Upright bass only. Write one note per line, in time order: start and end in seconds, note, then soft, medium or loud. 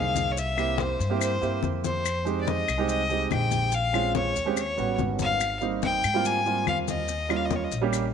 0.00 0.94 C2 medium
1.00 1.39 G2 medium
1.42 1.62 G2 medium
1.62 2.62 F2 medium
2.68 3.27 C2 medium
3.31 4.30 A#1 medium
4.36 4.75 D#2 medium
4.78 4.97 A1 medium
4.99 5.98 G#1 medium
6.04 6.63 G#2 medium
6.66 7.66 D#2 medium
7.71 8.11 A#1 medium